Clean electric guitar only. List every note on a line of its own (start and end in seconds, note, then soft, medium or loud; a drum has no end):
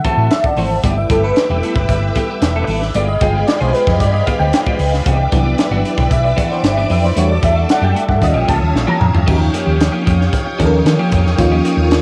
0.05 0.18 E3 medium
0.05 0.17 A3 medium
0.05 0.17 C4 medium
0.05 0.17 F#4 medium
0.18 0.30 E3 soft
0.18 0.31 A3 medium
0.18 0.30 C4 medium
0.18 0.30 F#4 medium
0.45 muted clean electric guitar stroke soft
0.58 0.73 E3 medium
0.58 0.71 A3 medium
0.58 0.70 C4 medium
0.58 0.70 F#4 loud
0.71 muted clean electric guitar stroke soft
0.84 1.00 G3 medium
0.84 0.97 B3 medium
0.84 0.97 E4 medium
0.84 0.96 G4 medium
0.97 muted clean electric guitar stroke soft
1.10 1.22 G3 medium
1.10 1.23 B3 medium
1.10 1.23 E4 medium
1.10 1.23 G4 medium
1.24 1.36 G3 soft
1.24 1.36 B3 medium
1.24 1.36 E4 medium
1.24 1.36 A4 medium
1.37 muted clean electric guitar stroke soft
1.50 1.62 G3 medium
1.50 1.62 B3 medium
1.50 1.62 E4 medium
1.50 1.63 G4 medium
1.63 1.75 G3 medium
1.63 1.75 B3 medium
1.63 1.76 E4 medium
1.63 1.76 A4 medium
1.76 muted clean electric guitar stroke soft
1.90 muted clean electric guitar stroke soft
2.03 muted clean electric guitar stroke soft
2.16 2.30 G3 medium
2.16 2.29 B3 medium
2.16 2.29 E4 medium
2.16 2.28 G4 loud
2.29 2.42 G3 medium
2.29 2.42 B3 medium
2.29 2.42 E4 medium
2.29 2.41 G4 medium
2.43 muted clean electric guitar stroke soft
2.56 2.68 G3 medium
2.56 2.68 B3 soft
2.56 2.68 E4 medium
2.56 2.68 A4 medium
2.69 2.84 G3 medium
2.69 2.82 B3 medium
2.69 2.82 E4 medium
2.69 2.82 A4 medium
2.82 muted clean electric guitar stroke soft
2.95 3.11 G#3 medium
2.95 3.08 B3 medium
2.95 3.08 F4 medium
2.95 3.07 G4 medium
3.09 muted clean electric guitar stroke soft
3.22 3.34 G#3 medium
3.22 3.34 B3 medium
3.22 3.34 F4 medium
3.22 3.34 G#4 medium
3.35 3.47 G#3 soft
3.35 3.47 B3 soft
3.35 3.47 F4 medium
3.35 3.47 G4 medium
3.48 muted clean electric guitar stroke soft
3.60 3.73 G#3 medium
3.60 3.74 B3 medium
3.60 3.74 F4 medium
3.60 3.75 G#4 medium
3.75 3.87 G#3 medium
3.75 3.87 B3 medium
3.75 3.86 F4 medium
3.75 3.86 G4 medium
4.00 muted clean electric guitar stroke soft
4.13 muted clean electric guitar stroke medium
4.27 4.40 G#3 medium
4.27 4.39 B3 medium
4.27 4.39 F4 medium
4.27 4.38 G4 medium
4.40 4.52 G#3 medium
4.40 4.52 B3 medium
4.40 4.52 F4 medium
4.40 4.52 G4 medium
4.53 muted clean electric guitar stroke soft
4.66 4.79 G#3 medium
4.66 4.79 B3 medium
4.66 4.79 F4 medium
4.66 4.80 G4 medium
4.80 muted clean electric guitar stroke soft
4.93 muted clean electric guitar stroke soft
5.06 5.22 E3 medium
5.06 5.18 B3 medium
5.06 5.18 D4 medium
5.06 5.17 F#4 medium
5.18 muted clean electric guitar stroke soft
5.32 5.44 E3 medium
5.32 5.45 B3 medium
5.32 5.44 D4 medium
5.32 5.45 F#4 medium
5.45 5.57 E3 medium
5.45 5.57 B3 medium
5.45 5.58 D4 medium
5.45 5.58 G4 medium
5.59 muted clean electric guitar stroke medium
5.72 5.84 E3 medium
5.72 5.84 B3 medium
5.72 5.84 D4 medium
5.72 5.85 F#4 medium
5.85 5.97 E3 medium
5.85 5.97 B3 medium
5.85 5.97 D4 medium
5.85 5.98 G4 medium
5.98 muted clean electric guitar stroke soft
6.11 muted clean electric guitar stroke soft
6.24 muted clean electric guitar stroke soft
6.36 6.50 E3 medium
6.36 6.50 B3 medium
6.36 6.50 D4 loud
6.36 6.49 F#4 loud
6.50 6.63 E3 medium
6.50 6.63 B3 medium
6.50 6.63 D4 medium
6.50 6.63 F#4 medium
6.64 muted clean electric guitar stroke soft
6.77 6.89 E3 medium
6.77 6.89 B3 medium
6.77 6.90 D4 medium
6.77 6.89 G4 medium
6.90 7.06 E3 medium
6.90 7.03 B3 medium
6.90 7.03 D4 medium
6.90 7.03 G4 medium
7.03 muted clean electric guitar stroke soft
7.16 7.32 G3 medium
7.16 7.29 A3 medium
7.16 7.29 D4 medium
7.16 7.28 F#4 medium
7.30 muted clean electric guitar stroke soft
7.42 7.55 G3 medium
7.42 7.55 A3 medium
7.42 7.55 D4 medium
7.42 7.55 G4 medium
7.55 7.68 G3 medium
7.55 7.68 A3 medium
7.55 7.69 D4 medium
7.55 7.68 F#4 medium
7.69 muted clean electric guitar stroke soft
7.82 7.94 G3 medium
7.82 7.94 A3 medium
7.82 7.94 D4 medium
7.82 7.95 G4 medium
7.95 8.08 G3 medium
7.95 8.08 A3 medium
7.95 8.08 D4 medium
7.95 8.08 F#4 medium
8.22 muted clean electric guitar stroke soft
8.34 8.46 F3 medium
8.34 8.47 A#3 medium
8.34 8.47 C#4 medium
8.34 8.47 G4 medium
8.48 8.64 F3 medium
8.48 8.60 A#3 medium
8.48 8.60 C#4 loud
8.48 8.59 G4 loud
8.61 muted clean electric guitar stroke medium
8.74 muted clean electric guitar stroke soft
8.87 8.99 F3 medium
8.87 9.00 A#3 medium
8.87 9.00 C#4 medium
8.87 9.00 G4 medium
9.01 muted clean electric guitar stroke soft
9.14 muted clean electric guitar stroke medium
9.27 9.43 F3 medium
9.27 9.39 A#3 medium
9.27 9.39 C#4 medium
9.27 9.39 G4 medium
9.40 muted clean electric guitar stroke soft
9.53 9.66 F3 medium
9.53 9.66 A#3 medium
9.53 9.65 C#4 medium
9.53 9.65 G4 medium
9.66 9.77 F3 medium
9.66 9.77 A#3 medium
9.66 9.78 C#4 medium
9.66 9.78 G4 medium
9.78 muted clean electric guitar stroke soft
9.92 10.04 F3 medium
9.92 10.04 A#3 medium
9.92 10.05 C#4 medium
9.92 10.05 G4 medium
10.05 10.22 F3 medium
10.05 10.19 A#3 medium
10.05 10.18 C#4 medium
10.05 10.18 G4 medium
10.19 muted clean electric guitar stroke soft
10.46 muted clean electric guitar stroke soft
10.59 10.75 F3 medium
10.59 10.72 A#3 medium
10.59 10.72 C#4 medium
10.59 10.71 G4 medium
10.73 muted clean electric guitar stroke soft
10.86 muted clean electric guitar stroke soft
10.99 11.12 F3 medium
10.99 11.12 A#3 medium
10.99 11.12 C#4 medium
10.99 11.13 G4 loud
11.13 11.25 F3 medium
11.13 11.25 A#3 medium
11.13 11.25 C#4 medium
11.13 11.24 G4 medium
11.25 muted clean electric guitar stroke soft
11.39 muted clean electric guitar stroke soft
11.52 11.64 F3 medium
11.52 11.64 A#3 medium
11.52 11.65 C#4 medium
11.52 11.65 G4 medium
11.65 11.77 F3 medium
11.65 11.77 A#3 medium
11.65 11.77 C#4 medium
11.65 11.77 G4 medium
11.78 muted clean electric guitar stroke soft
11.92 muted clean electric guitar stroke soft